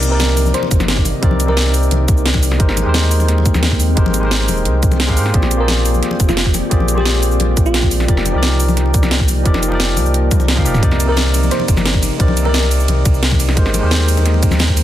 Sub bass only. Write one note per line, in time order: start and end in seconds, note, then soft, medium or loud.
0.00 0.53 C2 medium
0.71 1.13 G1 loud
1.23 1.90 C2 loud
1.91 2.07 C2 medium
2.08 2.58 C2 loud
2.60 2.84 G#1 loud
2.86 3.96 D#2 medium
3.97 4.50 G#1 loud
4.48 4.67 D#1 medium
4.65 5.18 C2 loud
5.17 5.32 G#2 loud
5.34 6.01 A#1 loud
6.20 6.62 F1 loud
6.71 7.38 A#1 loud
7.40 7.55 A#1 medium
7.57 8.07 A#1 loud
8.08 8.33 F1 loud
8.34 9.44 C2 medium
9.46 9.99 F1 loud
9.97 10.30 C2 medium
10.40 10.67 C2 loud
10.66 10.81 D#1 medium
10.83 11.50 C2 loud
11.68 12.10 G1 loud
12.20 12.87 C2 loud
12.88 13.04 C2 medium
13.06 13.58 C2 loud
13.57 13.81 G#1 loud
13.83 14.83 D#2 medium